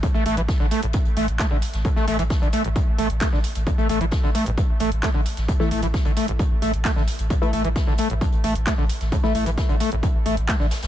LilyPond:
<<
  \new Staff \with { instrumentName = "Synth stab" } { \time 4/4 \key c \major \tempo 4 = 132 r1 | r1 | r1 | r16 <e a e'>16 r2. r8 |
r16 <e a e'>16 r2. r8 | r16 <e a e'>16 r2. r8 | }
  \new Staff \with { instrumentName = "Acid bass" } { \clef bass \time 4/4 \key c \major a,16 a16 a16 e16 r16 d16 a16 a,,16 g,16 r16 a16 r16 a16 d16 r8 | a,16 a16 a16 e16 r16 d16 a16 a,,16 g,16 r16 a16 r16 a16 d16 r8 | a,16 a16 a16 e16 r16 d16 a16 a,,16 g,16 r16 a16 r16 a16 d16 r8 | a,16 a16 a16 e16 r16 d16 a16 a,,16 g,16 r16 a16 r16 a16 d16 r8 |
a,16 a16 a16 e16 r16 d16 a16 a,,16 g,16 r16 a16 r16 a16 d16 r8 | a,16 a16 a16 e16 r16 d16 a16 a,,16 g,16 r16 a16 r16 a16 d16 r8 | }
  \new Staff \with { instrumentName = "Sub bass" } { \clef bass \time 4/4 \key c \major r16 a,,16 a,,16 a,,16 r16 a,,16 r16 a,,16 r16 a,,16 a,,16 a,,16 r16 a,,16 r16 a,,16 | r16 a,,16 a,,16 a,,16 r16 a,,16 r16 a,,16 r16 a,,16 a,,16 a,,16 r16 a,,16 r16 a,,16 | r16 a,,16 a,,16 a,,16 r16 a,,16 r16 a,,16 r16 a,,16 a,,16 a,,16 r16 a,,16 r16 a,,16 | r16 a,,16 a,,16 a,,16 r16 a,,16 r16 a,,16 r16 a,,16 a,,16 a,,16 r16 a,,16 r16 a,,16 |
r16 a,,16 a,,16 a,,16 r16 a,,16 r16 a,,16 r16 a,,16 a,,16 a,,16 r16 a,,16 r16 a,,16 | r16 a,,16 a,,16 a,,16 r16 a,,16 r16 a,,16 r16 a,,16 a,,16 a,,16 r16 a,,16 r16 a,,16 | }
  \new DrumStaff \with { instrumentName = "Drums" } \drummode { \time 4/4 <hh bd>16 hh16 <hh hho>16 hh16 <hh bd sn>16 sn16 <hh hho>16 hh16 <hh bd>16 hh16 <hh hho>16 hh16 <hc hh bd sn>8 <hh hho>16 <hh sn>16 | <hh bd>16 sn16 <hh hho>16 hh16 <hh bd sn>16 hh16 <hh hho>16 hh16 <hh bd>8 <hh hho>16 hh16 <hc hh bd sn>16 sn16 <hh hho>16 hh16 | <hh bd>16 hh16 <hh hho>16 hh16 <hh bd sn>16 sn16 <hh hho>16 hh16 <hh bd>8 <hh hho>16 hh16 <hc hh bd sn>8 <hh hho>16 <hh sn>16 | <hh bd>16 sn16 <hh hho>16 hh16 <hh bd sn>16 hh16 <hh hho>16 hh16 <hh bd>8 <hh hho>16 hh16 <hc hh bd sn>16 sn16 <hh hho>16 hh16 |
<hh bd>16 hh16 <hh hho>16 hh16 <hh bd sn>16 sn16 <hh hho>16 hh16 <hh bd>16 hh16 <hh hho>16 hh16 <hc hh bd sn>8 <hh hho>16 <hh sn>16 | <hh bd>16 sn16 <hh hho>16 hh16 <hh bd sn>16 hh16 <hh hho>16 hh16 <hh bd>8 <hh hho>16 hh16 <hc hh bd sn>16 sn16 <hh hho sn>16 <hh sn>16 | }
>>